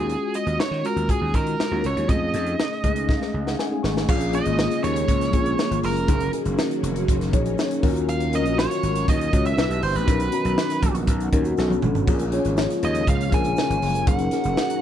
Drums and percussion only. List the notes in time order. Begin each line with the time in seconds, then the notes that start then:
0.10 closed hi-hat
0.34 closed hi-hat
0.47 closed hi-hat
0.60 snare
0.73 snare
0.85 closed hi-hat
0.97 closed hi-hat
1.09 kick, closed hi-hat
1.34 kick, closed hi-hat
1.47 closed hi-hat
1.60 snare
1.84 closed hi-hat
1.97 closed hi-hat
2.09 kick, closed hi-hat
2.34 snare, closed hi-hat
2.46 closed hi-hat
2.60 snare
2.72 snare
2.84 kick, closed hi-hat
2.96 closed hi-hat
3.09 kick, snare
3.22 snare
3.47 snare
3.59 snare
3.84 snare
3.97 snare
4.09 kick, crash, shaker
4.20 closed hi-hat, shaker
4.33 closed hi-hat, shaker
4.45 closed hi-hat, shaker
4.58 snare, shaker
4.71 snare, closed hi-hat, shaker
4.83 closed hi-hat, shaker
4.96 closed hi-hat, shaker
5.08 kick, closed hi-hat, shaker
5.21 snare, closed hi-hat, shaker
5.33 kick, closed hi-hat, shaker
5.46 closed hi-hat, shaker
5.58 snare, shaker
5.72 closed hi-hat, shaker
5.83 open hi-hat, shaker
5.97 closed hi-hat, shaker
6.08 kick, closed hi-hat, shaker
6.20 closed hi-hat, shaker
6.33 closed hi-hat, shaker
6.45 closed hi-hat, shaker
6.58 snare, shaker
6.71 closed hi-hat, shaker
6.84 closed hi-hat, shaker
6.96 closed hi-hat, shaker
7.08 kick, closed hi-hat, shaker
7.21 snare, closed hi-hat, shaker
7.33 kick, closed hi-hat, shaker
7.46 closed hi-hat, shaker
7.58 snare, shaker
7.71 closed hi-hat, shaker
7.83 kick, open hi-hat, shaker
7.96 closed hi-hat, shaker
8.09 closed hi-hat, shaker
8.20 closed hi-hat, shaker
8.33 closed hi-hat, shaker
8.46 closed hi-hat, shaker
8.59 snare, shaker
8.71 snare, closed hi-hat, shaker
8.83 closed hi-hat, shaker
8.95 closed hi-hat, shaker
9.08 kick, closed hi-hat, shaker
9.21 closed hi-hat, shaker
9.33 kick, closed hi-hat, shaker
9.46 closed hi-hat, shaker
9.58 snare, shaker
9.71 closed hi-hat, shaker
9.83 open hi-hat, shaker
9.95 closed hi-hat, shaker
10.08 kick, closed hi-hat, shaker
10.20 closed hi-hat, shaker
10.32 closed hi-hat, shaker
10.45 closed hi-hat, shaker
10.58 snare, shaker
10.70 snare, closed hi-hat, shaker
10.83 kick, closed hi-hat, shaker
10.95 closed hi-hat, shaker
11.07 kick, closed hi-hat, shaker
11.20 closed hi-hat, shaker
11.33 kick, closed hi-hat, shaker
11.45 closed hi-hat, shaker
11.57 snare, shaker
11.70 high tom, shaker
11.82 mid tom, shaker
11.95 floor tom, shaker
12.07 kick, crash, shaker
12.19 closed hi-hat, shaker
12.32 closed hi-hat, shaker
12.45 closed hi-hat, shaker
12.57 snare, shaker
12.70 snare, closed hi-hat, shaker
12.83 closed hi-hat, shaker
12.95 closed hi-hat, shaker
13.07 kick, closed hi-hat, shaker
13.21 closed hi-hat, shaker
13.32 kick, closed hi-hat, shaker
13.44 closed hi-hat, shaker
13.56 snare, shaker
13.71 closed hi-hat, shaker
13.82 open hi-hat, shaker
13.95 closed hi-hat, shaker
14.07 kick, closed hi-hat, shaker
14.19 closed hi-hat, shaker
14.31 snare, closed hi-hat, shaker
14.44 closed hi-hat, shaker
14.57 snare, shaker
14.70 closed hi-hat, shaker